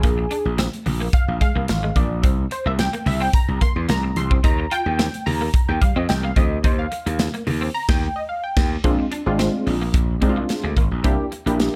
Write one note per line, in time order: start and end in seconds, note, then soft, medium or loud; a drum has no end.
0.00 0.25 A#1 loud
0.00 0.13 A#3 medium
0.00 0.55 G#4 medium
0.00 kick loud
0.00 closed hi-hat medium
0.00 muted conga soft
0.18 muted clean electric guitar stroke soft
0.31 0.41 D4 medium
0.31 closed hi-hat medium
0.45 0.67 A#1 medium
0.58 0.68 C4 medium
0.58 snare loud
0.58 closed hi-hat medium
0.58 high conga medium
0.73 closed hi-hat soft
0.86 1.07 A#1 medium
0.86 muted clean electric guitar stroke soft
0.86 open hi-hat medium
0.86 low conga medium
1.00 1.09 A#3 medium
1.13 1.40 F5 loud
1.13 muted clean electric guitar stroke soft
1.13 kick loud
1.13 closed hi-hat medium
1.28 1.38 A#1 medium
1.41 1.51 G#3 medium
1.41 1.98 F5 loud
1.41 kick medium
1.41 closed hi-hat medium
1.41 muted conga medium
1.55 1.66 C2 medium
1.55 1.64 A#3 medium
1.68 1.90 G#1 loud
1.68 muted clean electric guitar stroke soft
1.68 snare loud
1.68 closed hi-hat medium
1.68 high conga medium
1.83 1.92 G#3 medium
1.96 2.24 A#1 medium
1.96 2.06 A#3 medium
1.96 2.22 D5 medium
1.96 kick medium
1.96 closed hi-hat medium
1.96 high conga medium
2.23 2.45 C2 loud
2.23 2.33 C4 medium
2.23 kick loud
2.23 closed hi-hat medium
2.23 muted conga soft
2.51 2.65 C5 medium
2.51 muted clean electric guitar stroke soft
2.51 closed hi-hat medium
2.66 2.87 C2 medium
2.66 2.75 A#3 medium
2.66 2.72 E5 medium
2.79 3.07 G5 loud
2.79 snare loud
2.79 closed hi-hat medium
2.79 high conga medium
2.93 3.02 A#3 medium
2.93 closed hi-hat medium
3.06 3.27 C2 loud
3.06 3.20 E5 medium
3.06 muted clean electric guitar stroke soft
3.06 open hi-hat medium
3.06 low conga medium
3.21 3.29 C4 medium
3.21 3.34 G5 medium
3.33 3.60 A#5 loud
3.33 kick loud
3.33 closed hi-hat loud
3.33 muted conga soft
3.48 3.58 C2 loud
3.61 3.71 A#3 medium
3.61 3.90 C6 loud
3.61 kick medium
3.61 closed hi-hat medium
3.61 muted conga medium
3.76 3.86 E2 medium
3.89 4.10 C2 medium
3.89 3.98 A#3 medium
3.89 4.17 A#5 loud
3.89 snare loud
3.89 closed hi-hat medium
3.89 high conga medium
4.03 muted clean electric guitar stroke soft
4.16 4.38 C2 medium
4.16 4.45 C6 loud
4.16 closed hi-hat medium
4.16 high conga medium
4.31 4.40 C4 medium
4.31 kick medium
4.44 4.65 D#2 loud
4.44 4.54 D#4 medium
4.44 4.72 A#5 loud
4.44 kick loud
4.44 closed hi-hat medium
4.44 muted conga soft
4.59 muted clean electric guitar stroke soft
4.71 4.81 F4 medium
4.71 5.23 G5 loud
4.71 closed hi-hat medium
4.86 5.07 D#2 loud
4.99 5.09 C4 medium
4.99 snare loud
4.99 closed hi-hat medium
4.99 high conga medium
5.14 closed hi-hat medium
5.26 5.48 D#2 medium
5.26 5.70 A#5 loud
5.26 muted clean electric guitar stroke soft
5.26 open hi-hat medium
5.26 low conga medium
5.41 5.50 A#3 medium
5.54 muted clean electric guitar stroke soft
5.54 kick loud
5.54 closed hi-hat medium
5.69 5.79 D#2 medium
5.69 5.81 G5 medium
5.81 5.91 G3 medium
5.81 5.95 F5 medium
5.81 kick medium
5.81 closed hi-hat medium
5.81 muted conga medium
5.96 6.06 F2 medium
5.96 6.05 C4 medium
5.96 6.09 D#5 medium
6.09 6.31 C2 loud
6.09 6.24 G5 medium
6.09 muted clean electric guitar stroke soft
6.09 snare loud
6.09 closed hi-hat medium
6.09 high conga medium
6.23 6.32 A#3 medium
6.23 6.37 F5 medium
6.36 6.58 D2 medium
6.36 6.46 C4 medium
6.36 6.65 D#5 medium
6.36 kick medium
6.36 closed hi-hat medium
6.36 high conga medium
6.64 6.85 D#2 loud
6.64 6.74 D#4 medium
6.64 6.79 C5 loud
6.64 kick loud
6.64 closed hi-hat medium
6.64 muted conga soft
6.79 7.30 F5 medium
6.92 muted clean electric guitar stroke soft
6.92 closed hi-hat medium
7.06 7.28 D#2 loud
7.06 7.15 A#3 medium
7.06 closed hi-hat medium
7.19 snare loud
7.19 closed hi-hat medium
7.19 high conga medium
7.34 7.42 A#3 medium
7.34 closed hi-hat soft
7.47 7.68 D#2 medium
7.47 muted clean electric guitar stroke soft
7.47 open hi-hat medium
7.47 low conga medium
7.61 7.70 C4 medium
7.74 7.88 A#5 loud
7.89 8.07 D#2 loud
7.89 8.17 G5 loud
7.89 kick loud
7.89 snare loud
7.89 crash medium
8.16 8.22 D#5 medium
8.29 8.44 F5 medium
8.44 8.69 G5 medium
8.57 8.76 D#2 loud
8.57 kick loud
8.57 snare loud
8.57 crash medium
8.84 8.96 A#1 loud
8.84 9.05 G#3 medium
8.84 8.94 A#3 medium
8.84 9.05 C4 medium
8.84 9.06 D4 medium
8.84 9.06 F4 loud
8.84 kick loud
8.84 closed hi-hat medium
8.99 muted clean electric guitar stroke soft
9.12 9.21 D4 medium
9.12 closed hi-hat medium
9.26 9.48 G#1 medium
9.26 9.75 G#3 medium
9.26 9.75 C4 medium
9.26 9.75 D4 medium
9.26 9.75 F4 loud
9.39 9.49 C4 medium
9.39 snare loud
9.39 closed hi-hat medium
9.67 9.88 A#1 medium
9.67 muted clean electric guitar stroke soft
9.67 open hi-hat medium
9.81 9.90 A#3 medium
9.94 10.15 A#1 medium
9.94 muted clean electric guitar stroke soft
9.94 kick loud
9.94 closed hi-hat medium
10.22 10.43 C2 loud
10.22 10.31 G#3 medium
10.22 10.64 G#3 medium
10.22 10.64 C4 medium
10.22 10.65 D4 medium
10.22 10.29 D#4 medium
10.22 kick medium
10.22 closed hi-hat medium
10.29 10.68 F4 loud
10.36 10.45 A#3 medium
10.49 muted clean electric guitar stroke soft
10.49 snare loud
10.49 closed hi-hat medium
10.64 10.74 D2 medium
10.64 10.72 G#3 medium
10.77 10.88 G#1 medium
10.77 10.87 A#3 medium
10.77 kick medium
10.77 closed hi-hat medium
10.91 11.01 A#1 medium
11.04 11.16 C2 loud
11.04 11.26 A#3 medium
11.04 11.14 C4 medium
11.04 11.26 D4 medium
11.04 11.26 E4 medium
11.04 11.26 G4 loud
11.04 kick loud
11.04 closed hi-hat medium
11.32 muted clean electric guitar stroke soft
11.32 closed hi-hat medium
11.46 11.68 A#1 medium
11.46 11.55 A#3 medium
11.46 11.76 A#3 medium
11.46 11.76 D4 medium
11.46 11.76 E4 medium
11.46 11.76 G4 medium
11.46 closed hi-hat medium
11.60 snare loud
11.60 closed hi-hat medium